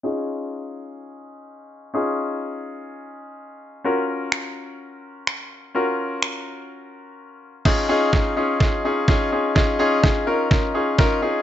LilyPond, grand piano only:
\new Staff \with { instrumentName = "Grand piano" } { \time 4/4 \key des \major \tempo 4 = 126 <des' ees' f' aes'>1 | <des' ees' f' aes'>1 | <des' f' ges' bes'>1 | <des' f' ges' bes'>1 |
<des' ees' f' aes'>8 <des' ees' f' aes'>8 <des' ees' f' aes'>8 <des' ees' f' aes'>8 <des' ees' f' aes'>8 <des' ees' f' aes'>8 <des' ees' f' aes'>8 <des' ees' f' aes'>8 | <des' ees' f' aes'>8 <des' ees' f' aes'>8 <des' ees' f' aes'>8 <des' ees' f' bes'>8 <des' ees' f' bes'>8 <des' ees' f' aes'>8 <des' ees' f' bes'>8 <des' ees' f' aes'>8 | }